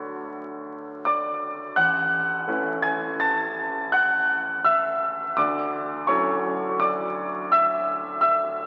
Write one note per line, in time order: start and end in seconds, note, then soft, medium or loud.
0.00 1.77 D2 soft
0.00 1.72 A3 soft
0.00 1.72 D4 soft
0.00 1.72 F#4 soft
0.00 1.72 A4 soft
0.00 1.77 B4 medium
0.00 1.01 C#5 soft
0.00 1.78 B5 medium
0.00 1.05 C#6 medium
1.05 1.72 D5 medium
1.05 1.75 D6 medium
1.76 2.45 A1 soft
1.76 2.79 F#5 medium
1.76 2.83 F#6 medium
2.47 5.33 A3 soft
2.47 5.33 C#4 soft
2.47 5.33 E4 soft
2.47 5.34 B4 soft
2.82 3.17 G#5 medium
2.82 3.19 G#6 medium
3.20 3.89 A5 medium
3.20 3.93 A6 medium
3.92 4.61 F#5 medium
3.92 4.64 F#6 medium
4.64 5.33 E5 medium
4.64 5.36 E6 medium
5.37 6.06 D2 soft
5.37 6.04 D5 medium
5.37 6.07 D6 medium
6.07 8.67 F#3 soft
6.07 8.67 C#4 soft
6.07 8.67 E4 soft
6.07 8.67 A4 soft
6.07 6.77 C#5 medium
6.07 6.80 C#6 medium
6.80 7.48 D5 medium
6.80 7.52 D6 medium
7.52 8.18 E5 medium
7.52 8.19 E6 medium
8.21 8.67 E5 medium
8.21 8.67 E6 medium